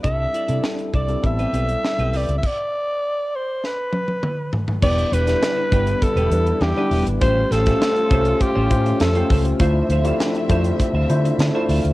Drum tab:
CC |----------------|x---------------|x---------------|----------------|
HH |x-xx-xxxxxxx-xox|----------------|-xxxx-xxxxxxx-ox|x-xxxxxxx-xxxxox|
SD |----o-------o---|--------o-------|---oo-------o---|--ooo-------o---|
T1 |----------------|----------oo----|----------------|----------------|
T2 |----------------|------------o---|----------------|----------------|
FT |----------------|--------------oo|----------------|----------------|
BD |o-----o-o-------|o---------------|o-----o-o-------|o--o--o-o-o---o-|

CC |----------------|
HH |x-xxxxxxx-xxx-ox|
SD |----o-------o---|
T1 |----------------|
T2 |----------------|
FT |----------------|
BD |o-----o-o-------|